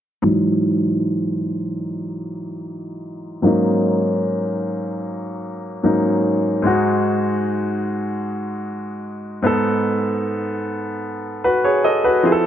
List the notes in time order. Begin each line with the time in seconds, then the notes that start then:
0.22 G#2 E3 F#3
0.27 D#4
3.42 G#2 F#3 A#3 C#4
3.46 D#4
5.83 G#2 F#3 A#3 C#4 D#4
6.62 G#2 G#3 D#4
6.67 F#4
9.42 G#2 B3 D#4
9.46 A4
11.44 F#4 B4
11.64 G#4 C#5
11.84 A4 D#5
12.04 F#4 B4
12.23 F3 C4 E4 G#4
12.32 A4